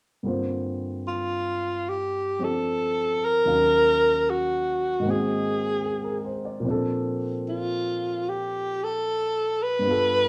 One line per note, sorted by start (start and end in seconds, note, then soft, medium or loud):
0.23 3.44 G2 soft
0.23 3.45 D3 soft
0.23 3.45 A#3 soft
0.23 2.38 C4 soft
0.23 3.46 F4 soft
0.28 3.47 C5 soft
1.08 1.90 F4 medium
1.89 2.45 G4 medium
2.39 3.45 F3 soft
2.39 3.45 C4 soft
2.39 3.46 D4 soft
2.39 3.46 G4 soft
2.39 3.46 D5 soft
2.44 3.27 A4 medium
3.25 4.31 A#4 loud
3.45 5.05 D#2 soft
3.45 5.00 D#3 soft
3.45 5.05 F#3 soft
3.45 5.05 C#4 soft
3.45 5.06 F5 soft
4.30 5.12 F#4 medium
5.00 6.62 G#2 soft
5.00 6.63 D#3 soft
5.05 6.65 A#3 soft
5.05 6.64 C4 soft
5.10 6.67 F#4 soft
5.10 6.42 G#4 medium
5.86 6.23 G#4 soft
6.04 6.39 A#4 soft
6.25 6.49 C5 soft
6.45 6.73 D5 soft
6.60 9.82 A#2 soft
6.60 9.83 F3 soft
6.65 9.85 C4 soft
6.65 9.86 D4 soft
6.71 9.87 A4 medium
7.48 8.31 F4 medium
8.29 8.85 G4 medium
8.84 9.64 A4 medium
9.63 10.29 B4 medium
9.79 10.29 G2 soft
9.79 10.29 G3 soft
9.85 10.29 B3 soft
9.85 10.29 F4 soft
9.90 10.29 A4 medium